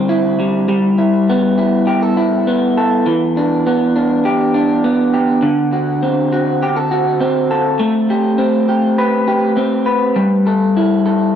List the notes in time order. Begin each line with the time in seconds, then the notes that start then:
Already playing: D3 G3 C4
0.09 E4
0.40 G3
0.68 G3
0.98 E4
1.29 B3
1.58 E4
1.87 G4
2.02 A4
2.17 E4
2.47 B3
2.77 A4
3.06 E3
3.37 D4
3.67 B3
3.96 D4
4.25 G4
4.54 D4
4.84 B3
5.14 G4
5.42 D3
5.73 F#4
6.03 C4
6.33 F#4
6.63 G4
6.76 A4
6.91 F#4
7.21 C4
7.51 A4
7.79 A3
8.10 G4
8.38 C4
8.69 G4
8.98 B4
9.28 G4
9.57 C4
9.86 B4
10.16 G3
10.47 A4
10.77 E4
11.06 A4